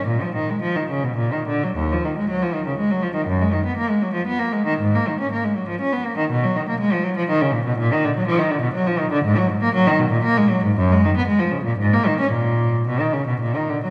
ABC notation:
X:1
M:3/4
L:1/16
Q:1/4=119
K:Ebm
V:1 name="Cello" clef=bass
B,, F, E, A, F, E, D, C, B,, E, =D, G, | E,, F, E, A, G, F, E, D, A, G, F, E, | G,, A, E, C B, A, G, F, C B, A, E, | A,, B, E, D B, A, G, F, D C B, E, |
C, G, E, B, A, F, G, F, E, D, B,, C, | B,, E, =D, G, F, E, D, C, G, F, E, D, | A,, G, A,, B, G, E, C, B,, B, A, G, A,, | G,, A, E, C A, F, D, B,, A,, B, E, D |
B,,4 C, E, D, C, B,, E, =D, G, |]